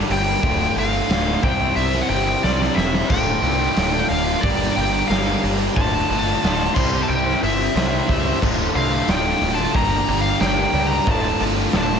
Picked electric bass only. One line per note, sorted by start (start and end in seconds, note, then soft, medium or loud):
0.10 0.35 G1 loud
0.43 0.68 D1 medium
0.76 1.01 G1 medium
1.09 1.34 D1 medium
1.43 1.68 C2 loud
1.76 2.01 C2 medium
2.09 2.34 G1 loud
2.44 2.68 C2 medium
2.76 3.01 E1 loud
3.10 3.34 D1 medium
3.42 3.67 C2 loud
3.77 4.01 D1 loud
4.10 4.34 D1 medium
4.43 4.67 G1 loud
4.77 5.01 G1 loud
5.10 5.34 G1 loud
5.43 5.67 G1 loud
5.77 6.01 D1 loud
6.10 6.34 G1 loud
6.44 6.68 D1 loud
6.76 7.00 C2 loud
7.09 7.33 C2 loud
7.43 7.67 G1 loud
7.75 8.00 C2 loud
8.09 8.33 C#2 medium
8.43 8.67 D1 loud
8.75 8.99 C2 medium
9.08 9.32 D1 loud
9.41 9.66 D1 loud
9.75 9.99 G1 loud
10.08 10.32 G1 loud
10.40 10.65 G1 loud
10.73 10.98 C#2 loud
11.07 11.32 D1 loud
11.40 11.65 G1 loud
11.74 11.98 D1 loud